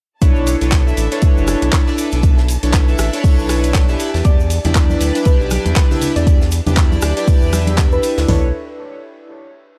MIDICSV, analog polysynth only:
0, 0, Header, 1, 2, 480
1, 0, Start_track
1, 0, Key_signature, 2, "minor"
1, 0, Tempo, 504202
1, 207, Time_signature, 4, 2, 24, 8
1, 9313, End_track
2, 0, Start_track
2, 0, Title_t, "Analog polysynth"
2, 0, Program_c, 0, 90
2, 204, Note_on_c, 0, 62, 105
2, 206, Note_on_c, 0, 64, 91
2, 207, Note_on_c, 0, 69, 98
2, 208, Note_on_c, 0, 71, 92
2, 209, Note_on_c, 0, 73, 115
2, 528, Note_off_c, 0, 62, 0
2, 529, Note_off_c, 0, 64, 0
2, 530, Note_off_c, 0, 69, 0
2, 530, Note_off_c, 0, 71, 0
2, 531, Note_off_c, 0, 73, 0
2, 582, Note_on_c, 0, 62, 83
2, 583, Note_on_c, 0, 64, 74
2, 585, Note_on_c, 0, 69, 77
2, 586, Note_on_c, 0, 71, 79
2, 588, Note_on_c, 0, 73, 92
2, 790, Note_off_c, 0, 62, 0
2, 791, Note_off_c, 0, 64, 0
2, 792, Note_off_c, 0, 69, 0
2, 792, Note_off_c, 0, 71, 0
2, 793, Note_off_c, 0, 73, 0
2, 823, Note_on_c, 0, 62, 82
2, 824, Note_on_c, 0, 64, 75
2, 825, Note_on_c, 0, 69, 74
2, 827, Note_on_c, 0, 71, 76
2, 828, Note_on_c, 0, 76, 93
2, 1031, Note_off_c, 0, 62, 0
2, 1031, Note_off_c, 0, 64, 0
2, 1032, Note_off_c, 0, 69, 0
2, 1033, Note_off_c, 0, 71, 0
2, 1033, Note_off_c, 0, 76, 0
2, 1060, Note_on_c, 0, 62, 99
2, 1062, Note_on_c, 0, 64, 89
2, 1065, Note_on_c, 0, 69, 89
2, 1068, Note_on_c, 0, 71, 90
2, 1070, Note_on_c, 0, 73, 108
2, 1749, Note_off_c, 0, 62, 0
2, 1750, Note_off_c, 0, 64, 0
2, 1752, Note_off_c, 0, 69, 0
2, 1753, Note_off_c, 0, 71, 0
2, 1754, Note_off_c, 0, 73, 0
2, 1782, Note_on_c, 0, 62, 96
2, 1783, Note_on_c, 0, 64, 91
2, 1785, Note_on_c, 0, 69, 94
2, 1786, Note_on_c, 0, 71, 95
2, 1787, Note_on_c, 0, 74, 107
2, 1982, Note_off_c, 0, 62, 0
2, 1982, Note_off_c, 0, 64, 0
2, 1983, Note_off_c, 0, 69, 0
2, 1984, Note_off_c, 0, 71, 0
2, 1984, Note_off_c, 0, 74, 0
2, 2022, Note_on_c, 0, 62, 72
2, 2023, Note_on_c, 0, 64, 68
2, 2024, Note_on_c, 0, 69, 70
2, 2026, Note_on_c, 0, 71, 68
2, 2027, Note_on_c, 0, 76, 82
2, 2236, Note_off_c, 0, 62, 0
2, 2237, Note_off_c, 0, 64, 0
2, 2237, Note_off_c, 0, 69, 0
2, 2238, Note_off_c, 0, 71, 0
2, 2239, Note_off_c, 0, 76, 0
2, 2502, Note_on_c, 0, 62, 81
2, 2503, Note_on_c, 0, 64, 74
2, 2504, Note_on_c, 0, 69, 77
2, 2505, Note_on_c, 0, 71, 74
2, 2507, Note_on_c, 0, 73, 96
2, 2710, Note_off_c, 0, 62, 0
2, 2711, Note_off_c, 0, 64, 0
2, 2711, Note_off_c, 0, 69, 0
2, 2712, Note_off_c, 0, 71, 0
2, 2713, Note_off_c, 0, 73, 0
2, 2742, Note_on_c, 0, 62, 81
2, 2743, Note_on_c, 0, 64, 74
2, 2745, Note_on_c, 0, 69, 74
2, 2746, Note_on_c, 0, 71, 79
2, 2747, Note_on_c, 0, 76, 90
2, 2950, Note_off_c, 0, 62, 0
2, 2951, Note_off_c, 0, 64, 0
2, 2951, Note_off_c, 0, 69, 0
2, 2952, Note_off_c, 0, 71, 0
2, 2953, Note_off_c, 0, 76, 0
2, 2979, Note_on_c, 0, 62, 98
2, 2982, Note_on_c, 0, 64, 93
2, 2985, Note_on_c, 0, 69, 90
2, 2987, Note_on_c, 0, 71, 91
2, 2990, Note_on_c, 0, 73, 108
2, 3669, Note_off_c, 0, 62, 0
2, 3670, Note_off_c, 0, 64, 0
2, 3672, Note_off_c, 0, 69, 0
2, 3673, Note_off_c, 0, 71, 0
2, 3674, Note_off_c, 0, 73, 0
2, 3702, Note_on_c, 0, 62, 97
2, 3703, Note_on_c, 0, 64, 90
2, 3705, Note_on_c, 0, 67, 91
2, 3706, Note_on_c, 0, 71, 93
2, 3707, Note_on_c, 0, 76, 109
2, 3902, Note_off_c, 0, 62, 0
2, 3902, Note_off_c, 0, 64, 0
2, 3903, Note_off_c, 0, 67, 0
2, 3904, Note_off_c, 0, 71, 0
2, 3904, Note_off_c, 0, 76, 0
2, 3942, Note_on_c, 0, 62, 73
2, 3943, Note_on_c, 0, 64, 67
2, 3945, Note_on_c, 0, 67, 69
2, 3946, Note_on_c, 0, 71, 68
2, 3947, Note_on_c, 0, 74, 81
2, 4156, Note_off_c, 0, 62, 0
2, 4157, Note_off_c, 0, 64, 0
2, 4157, Note_off_c, 0, 67, 0
2, 4158, Note_off_c, 0, 71, 0
2, 4159, Note_off_c, 0, 74, 0
2, 4422, Note_on_c, 0, 62, 81
2, 4424, Note_on_c, 0, 64, 73
2, 4425, Note_on_c, 0, 67, 79
2, 4427, Note_on_c, 0, 71, 78
2, 4428, Note_on_c, 0, 74, 90
2, 4630, Note_off_c, 0, 62, 0
2, 4631, Note_off_c, 0, 64, 0
2, 4632, Note_off_c, 0, 67, 0
2, 4633, Note_off_c, 0, 71, 0
2, 4633, Note_off_c, 0, 74, 0
2, 4663, Note_on_c, 0, 62, 83
2, 4664, Note_on_c, 0, 64, 78
2, 4665, Note_on_c, 0, 67, 77
2, 4667, Note_on_c, 0, 71, 77
2, 4668, Note_on_c, 0, 74, 96
2, 4871, Note_off_c, 0, 62, 0
2, 4871, Note_off_c, 0, 64, 0
2, 4872, Note_off_c, 0, 67, 0
2, 4873, Note_off_c, 0, 71, 0
2, 4873, Note_off_c, 0, 74, 0
2, 4900, Note_on_c, 0, 62, 98
2, 4902, Note_on_c, 0, 64, 89
2, 4905, Note_on_c, 0, 67, 92
2, 4907, Note_on_c, 0, 71, 91
2, 4910, Note_on_c, 0, 74, 107
2, 5589, Note_off_c, 0, 62, 0
2, 5590, Note_off_c, 0, 64, 0
2, 5592, Note_off_c, 0, 67, 0
2, 5593, Note_off_c, 0, 71, 0
2, 5594, Note_off_c, 0, 74, 0
2, 5623, Note_on_c, 0, 62, 99
2, 5624, Note_on_c, 0, 64, 94
2, 5626, Note_on_c, 0, 67, 91
2, 5627, Note_on_c, 0, 71, 97
2, 5628, Note_on_c, 0, 76, 109
2, 5822, Note_off_c, 0, 62, 0
2, 5823, Note_off_c, 0, 64, 0
2, 5824, Note_off_c, 0, 67, 0
2, 5824, Note_off_c, 0, 71, 0
2, 5825, Note_off_c, 0, 76, 0
2, 5863, Note_on_c, 0, 62, 76
2, 5864, Note_on_c, 0, 64, 67
2, 5866, Note_on_c, 0, 67, 70
2, 5867, Note_on_c, 0, 71, 67
2, 5869, Note_on_c, 0, 74, 85
2, 6077, Note_off_c, 0, 62, 0
2, 6077, Note_off_c, 0, 64, 0
2, 6078, Note_off_c, 0, 67, 0
2, 6079, Note_off_c, 0, 71, 0
2, 6079, Note_off_c, 0, 74, 0
2, 6343, Note_on_c, 0, 62, 83
2, 6344, Note_on_c, 0, 64, 79
2, 6346, Note_on_c, 0, 67, 76
2, 6347, Note_on_c, 0, 71, 77
2, 6348, Note_on_c, 0, 74, 89
2, 6551, Note_off_c, 0, 62, 0
2, 6551, Note_off_c, 0, 64, 0
2, 6552, Note_off_c, 0, 67, 0
2, 6553, Note_off_c, 0, 71, 0
2, 6553, Note_off_c, 0, 74, 0
2, 6583, Note_on_c, 0, 62, 85
2, 6585, Note_on_c, 0, 64, 75
2, 6586, Note_on_c, 0, 67, 74
2, 6587, Note_on_c, 0, 71, 76
2, 6589, Note_on_c, 0, 74, 94
2, 6791, Note_off_c, 0, 62, 0
2, 6791, Note_off_c, 0, 64, 0
2, 6792, Note_off_c, 0, 67, 0
2, 6793, Note_off_c, 0, 71, 0
2, 6793, Note_off_c, 0, 74, 0
2, 6823, Note_on_c, 0, 62, 100
2, 6824, Note_on_c, 0, 64, 94
2, 6826, Note_on_c, 0, 67, 94
2, 6827, Note_on_c, 0, 71, 92
2, 6829, Note_on_c, 0, 74, 111
2, 7145, Note_off_c, 0, 62, 0
2, 7146, Note_off_c, 0, 64, 0
2, 7147, Note_off_c, 0, 67, 0
2, 7147, Note_off_c, 0, 71, 0
2, 7148, Note_off_c, 0, 74, 0
2, 7162, Note_on_c, 0, 62, 89
2, 7165, Note_on_c, 0, 64, 82
2, 7167, Note_on_c, 0, 67, 83
2, 7170, Note_on_c, 0, 71, 78
2, 7172, Note_on_c, 0, 76, 98
2, 7868, Note_off_c, 0, 62, 0
2, 7874, Note_off_c, 0, 64, 0
2, 7875, Note_off_c, 0, 67, 0
2, 7876, Note_off_c, 0, 71, 0
2, 7877, Note_off_c, 0, 76, 0
2, 7879, Note_on_c, 0, 62, 86
2, 7883, Note_on_c, 0, 64, 81
2, 7887, Note_on_c, 0, 69, 82
2, 7892, Note_on_c, 0, 71, 81
2, 7895, Note_on_c, 0, 73, 101
2, 8068, Note_off_c, 0, 62, 0
2, 8070, Note_off_c, 0, 64, 0
2, 8072, Note_off_c, 0, 69, 0
2, 8075, Note_off_c, 0, 71, 0
2, 8076, Note_off_c, 0, 73, 0
2, 9313, End_track
0, 0, End_of_file